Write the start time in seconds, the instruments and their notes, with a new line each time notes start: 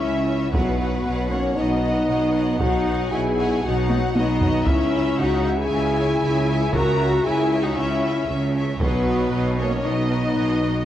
Already playing: viola section C#4, french horn section E4, violin section E5
0.01 double bass section C#2, tuba C#2, cello section C#3, violin section C#5 E5
0.27 violin section C#5 E5
0.53 tuba B1, double bass section B1, cello section B2, viola section F#3, french horn section B3, violin section B4 C#5 F#5, taiko
0.80 violin section C#5 F#5
1.05 double bass section B1, tuba B1, cello section B2, violin section C#5 F#5
1.30 viola section A#3, french horn section C#4, violin section C#5 F#5
1.56 double bass section B1, tuba B1, cello section B2, viola section B3, french horn section D#4, violin section C#5 D#5 F#5
1.81 violin section C#5 F#5
2.07 double bass section B1, tuba B1, cello section B2, violin section C#5 F#5
2.34 violin section C#5 F#5
2.59 tuba B1, double bass section B1, cello section B2, viola section D#4, french horn section F#4, violin section C#5 F#5, taiko
2.88 violin section C#5 F#5
3.10 tuba B1, double bass section B1, cello section B2, viola section E4, french horn section G#4, violin section C#5 F#5 G#5
3.37 violin section C#5 F#5
3.63 double bass section B1, tuba B1, cello section B2, viola section D#4, french horn section F#4, violin section C#5 F#5
3.89 violin section C#5 F#5, taiko high
4.15 tuba B1, double bass section B1, cello section B2, viola section B3, french horn section D#4, violin section C#5 D#5 F#5, taiko high
4.41 violin section C#5 F#5, taiko low
4.66 tuba C#2, double bass section C#2, cello section C#3, viola section C#4, french horn section E4, violin section C#5 E5, taiko
4.94 violin section C#5 E5
5.17 tuba C#2, double bass section C#2, cello section C#3, viola section D#4, french horn section F#4, violin section C#5 E5 F#5
5.45 violin section C#5 E5
5.57 viola section E4, french horn section G#4, violin section G#5
5.69 tuba C#2, double bass section C#2, cello section C#3, violin section C#5 E5
5.96 violin section C#5 E5
6.21 tuba C#2, double bass section C#2, cello section C#3, violin section C#5 E5
6.49 violin section C#5 E5
6.73 tuba C#2, double bass section C#2, cello section C#3, viola section F#4, french horn section A#4, violin section C#5 E5 A#5, taiko
6.99 violin section C#5 E5
7.24 double bass section C#2, tuba C#2, cello section C#3, viola section E4, french horn section G#4, violin section C#5 E5 G#5
7.52 violin section C#5 E5
7.64 viola section D#4, french horn section F#4, violin section F#5
7.76 tuba C#2, double bass section C#2, cello section C#3, viola section C#4, french horn section E4, violin section C#5 E5
8.04 violin section C#5 E5
8.29 double bass section C#2, tuba C#2, cello section C#3, violin section C#5 E5
8.55 violin section C#5 E5
8.80 double bass section B1, tuba B1, cello section B2, viola section F#3, french horn section B3, violin section B4 C#5 D#5, taiko
9.06 violin section C#5 D#5
9.31 tuba B1, double bass section B1, cello section B2, violin section C#5 D#5
9.56 viola section A#3, french horn section C#4, violin section C#5 D#5
9.60 violin section C#5
9.81 tuba B1, double bass section B1, cello section B2, viola section B3, french horn section D#4, violin section C#5 D#5
10.08 violin section C#5 D#5
10.34 tuba B1, double bass section B1, cello section B2, violin section C#5 D#5
10.62 violin section C#5 D#5